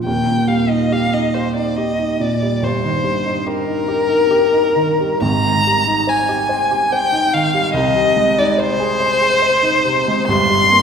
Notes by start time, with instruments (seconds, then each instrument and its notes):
0.05 grand piano D#1 D#2, violin G5
0.28 grand piano A#2
0.48 grand piano G3, violin F5
0.69 grand piano D#4, violin D#5
0.92 grand piano G4, violin F5
1.13 grand piano D#4, violin D#5
1.34 grand piano G4, violin C5
1.56 grand piano D#4, violin D5
1.76 grand piano G4, violin D#5
1.99 grand piano D#4
2.20 grand piano A#2, violin D5
2.42 grand piano G3
2.62 grand piano G1 G2, violin C5
2.84 grand piano D#3
3.04 grand piano G3
3.25 grand piano D#4
3.47 grand piano G4, violin A#4
3.67 grand piano D#4
3.88 grand piano G4
4.09 grand piano D#4
4.31 grand piano G4
4.52 grand piano D#4
4.76 grand piano D#3
5.00 grand piano G3
5.22 grand piano G#1 G#2, violin A#5
5.45 grand piano D#3
5.67 grand piano G3
5.87 grand piano D#4
6.07 grand piano C5, violin G#5
6.29 grand piano G4
6.49 grand piano C5
6.71 grand piano G4
6.92 grand piano C5, violin G5
7.12 grand piano D#4
7.33 grand piano D#3, violin F5
7.54 grand piano G3
7.74 grand piano C2, violin D#5
7.95 grand piano C3
8.17 grand piano G#3
8.38 grand piano D#4, violin D5
8.58 grand piano C5, violin C5
8.80 grand piano G#4
9.00 grand piano C5
9.22 grand piano G#4
9.42 grand piano C5
9.63 grand piano D#4
9.85 grand piano C3
10.08 grand piano G#3
10.28 grand piano G1 G2, violin C6
10.50 grand piano G3
10.72 grand piano A#3